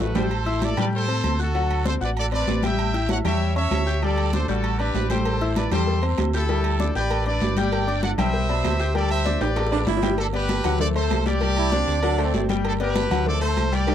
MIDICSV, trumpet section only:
0, 0, Header, 1, 2, 480
1, 0, Start_track
1, 0, Tempo, 308325
1, 486, Time_signature, 4, 2, 24, 8
1, 21714, End_track
2, 0, Start_track
2, 0, Title_t, "Trumpet section"
2, 0, Program_c, 0, 61
2, 0, Note_on_c, 0, 54, 76
2, 0, Note_on_c, 0, 57, 99
2, 13, Note_on_c, 0, 66, 62
2, 28, Note_on_c, 0, 71, 83
2, 188, Note_off_c, 0, 57, 0
2, 196, Note_off_c, 0, 54, 0
2, 233, Note_off_c, 0, 66, 0
2, 241, Note_off_c, 0, 71, 0
2, 266, Note_on_c, 0, 69, 71
2, 282, Note_on_c, 0, 72, 93
2, 971, Note_off_c, 0, 69, 0
2, 986, Note_off_c, 0, 72, 0
2, 990, Note_on_c, 0, 69, 68
2, 993, Note_on_c, 0, 74, 97
2, 1207, Note_off_c, 0, 74, 0
2, 1217, Note_on_c, 0, 71, 61
2, 1219, Note_off_c, 0, 69, 0
2, 1225, Note_on_c, 0, 74, 86
2, 1323, Note_off_c, 0, 71, 0
2, 1330, Note_off_c, 0, 74, 0
2, 1470, Note_on_c, 0, 69, 81
2, 1473, Note_on_c, 0, 72, 108
2, 2131, Note_off_c, 0, 69, 0
2, 2133, Note_off_c, 0, 72, 0
2, 2193, Note_on_c, 0, 69, 87
2, 2194, Note_on_c, 0, 66, 74
2, 2853, Note_off_c, 0, 69, 0
2, 2854, Note_off_c, 0, 66, 0
2, 2904, Note_on_c, 0, 69, 71
2, 2904, Note_on_c, 0, 72, 94
2, 3009, Note_off_c, 0, 69, 0
2, 3009, Note_off_c, 0, 72, 0
2, 3153, Note_on_c, 0, 71, 67
2, 3160, Note_on_c, 0, 74, 85
2, 3256, Note_off_c, 0, 71, 0
2, 3262, Note_off_c, 0, 74, 0
2, 3396, Note_on_c, 0, 74, 108
2, 3399, Note_on_c, 0, 69, 83
2, 3499, Note_off_c, 0, 74, 0
2, 3502, Note_off_c, 0, 69, 0
2, 3636, Note_on_c, 0, 71, 76
2, 3637, Note_on_c, 0, 74, 96
2, 4073, Note_off_c, 0, 71, 0
2, 4073, Note_off_c, 0, 74, 0
2, 4110, Note_on_c, 0, 79, 104
2, 4117, Note_on_c, 0, 76, 83
2, 4823, Note_off_c, 0, 79, 0
2, 4827, Note_off_c, 0, 76, 0
2, 4835, Note_on_c, 0, 78, 103
2, 4839, Note_on_c, 0, 73, 75
2, 4939, Note_off_c, 0, 78, 0
2, 4942, Note_off_c, 0, 73, 0
2, 5056, Note_on_c, 0, 73, 82
2, 5060, Note_on_c, 0, 76, 105
2, 5503, Note_off_c, 0, 73, 0
2, 5505, Note_off_c, 0, 76, 0
2, 5537, Note_on_c, 0, 76, 99
2, 5540, Note_on_c, 0, 73, 86
2, 6207, Note_off_c, 0, 76, 0
2, 6209, Note_off_c, 0, 73, 0
2, 6262, Note_on_c, 0, 74, 101
2, 6266, Note_on_c, 0, 69, 82
2, 6726, Note_off_c, 0, 69, 0
2, 6737, Note_on_c, 0, 72, 91
2, 6740, Note_off_c, 0, 74, 0
2, 6745, Note_on_c, 0, 69, 71
2, 6957, Note_off_c, 0, 69, 0
2, 6961, Note_off_c, 0, 72, 0
2, 6976, Note_on_c, 0, 69, 88
2, 6983, Note_on_c, 0, 66, 66
2, 7424, Note_off_c, 0, 69, 0
2, 7427, Note_off_c, 0, 66, 0
2, 7450, Note_on_c, 0, 71, 98
2, 7452, Note_on_c, 0, 67, 70
2, 7925, Note_on_c, 0, 72, 91
2, 7930, Note_on_c, 0, 69, 76
2, 7935, Note_off_c, 0, 71, 0
2, 7936, Note_off_c, 0, 67, 0
2, 8646, Note_on_c, 0, 74, 85
2, 8652, Note_off_c, 0, 72, 0
2, 8652, Note_on_c, 0, 71, 72
2, 8655, Note_off_c, 0, 69, 0
2, 8875, Note_off_c, 0, 74, 0
2, 8879, Note_off_c, 0, 71, 0
2, 8899, Note_on_c, 0, 72, 91
2, 8906, Note_on_c, 0, 69, 73
2, 9403, Note_off_c, 0, 72, 0
2, 9406, Note_off_c, 0, 69, 0
2, 9869, Note_on_c, 0, 69, 98
2, 9882, Note_on_c, 0, 64, 72
2, 10762, Note_off_c, 0, 69, 0
2, 10769, Note_off_c, 0, 64, 0
2, 10823, Note_on_c, 0, 74, 91
2, 10841, Note_on_c, 0, 71, 73
2, 11268, Note_off_c, 0, 74, 0
2, 11277, Note_off_c, 0, 71, 0
2, 11311, Note_on_c, 0, 74, 92
2, 11318, Note_on_c, 0, 71, 75
2, 11752, Note_off_c, 0, 74, 0
2, 11756, Note_off_c, 0, 71, 0
2, 11784, Note_on_c, 0, 79, 108
2, 11796, Note_on_c, 0, 74, 80
2, 12488, Note_on_c, 0, 78, 87
2, 12490, Note_off_c, 0, 74, 0
2, 12501, Note_off_c, 0, 79, 0
2, 12508, Note_on_c, 0, 74, 70
2, 12599, Note_off_c, 0, 78, 0
2, 12614, Note_off_c, 0, 74, 0
2, 12739, Note_on_c, 0, 76, 102
2, 12745, Note_on_c, 0, 72, 81
2, 13876, Note_off_c, 0, 76, 0
2, 13879, Note_off_c, 0, 72, 0
2, 13950, Note_on_c, 0, 74, 95
2, 13959, Note_on_c, 0, 69, 77
2, 14184, Note_off_c, 0, 74, 0
2, 14184, Note_on_c, 0, 76, 105
2, 14188, Note_off_c, 0, 69, 0
2, 14194, Note_on_c, 0, 72, 86
2, 14627, Note_off_c, 0, 76, 0
2, 14632, Note_off_c, 0, 72, 0
2, 14650, Note_on_c, 0, 74, 92
2, 14663, Note_on_c, 0, 71, 71
2, 15373, Note_off_c, 0, 74, 0
2, 15379, Note_off_c, 0, 71, 0
2, 15859, Note_on_c, 0, 69, 93
2, 15871, Note_on_c, 0, 62, 79
2, 15966, Note_off_c, 0, 69, 0
2, 15976, Note_off_c, 0, 62, 0
2, 16090, Note_on_c, 0, 71, 106
2, 16102, Note_on_c, 0, 67, 93
2, 16761, Note_off_c, 0, 71, 0
2, 16768, Note_off_c, 0, 67, 0
2, 16802, Note_on_c, 0, 74, 127
2, 16813, Note_on_c, 0, 69, 85
2, 16912, Note_off_c, 0, 74, 0
2, 16921, Note_off_c, 0, 69, 0
2, 17038, Note_on_c, 0, 72, 100
2, 17047, Note_on_c, 0, 69, 81
2, 17491, Note_off_c, 0, 72, 0
2, 17496, Note_off_c, 0, 69, 0
2, 17532, Note_on_c, 0, 74, 118
2, 17539, Note_on_c, 0, 67, 92
2, 18672, Note_off_c, 0, 67, 0
2, 19387, Note_off_c, 0, 74, 0
2, 19699, Note_on_c, 0, 69, 92
2, 19708, Note_on_c, 0, 62, 74
2, 19805, Note_off_c, 0, 69, 0
2, 19812, Note_off_c, 0, 62, 0
2, 19941, Note_on_c, 0, 67, 88
2, 19943, Note_on_c, 0, 71, 100
2, 20604, Note_off_c, 0, 67, 0
2, 20605, Note_off_c, 0, 71, 0
2, 20661, Note_on_c, 0, 74, 113
2, 20673, Note_on_c, 0, 69, 94
2, 20867, Note_off_c, 0, 69, 0
2, 20878, Note_off_c, 0, 74, 0
2, 20884, Note_on_c, 0, 72, 95
2, 20885, Note_on_c, 0, 69, 76
2, 21331, Note_off_c, 0, 72, 0
2, 21332, Note_off_c, 0, 69, 0
2, 21375, Note_on_c, 0, 74, 98
2, 21376, Note_on_c, 0, 67, 74
2, 21714, Note_off_c, 0, 67, 0
2, 21714, Note_off_c, 0, 74, 0
2, 21714, End_track
0, 0, End_of_file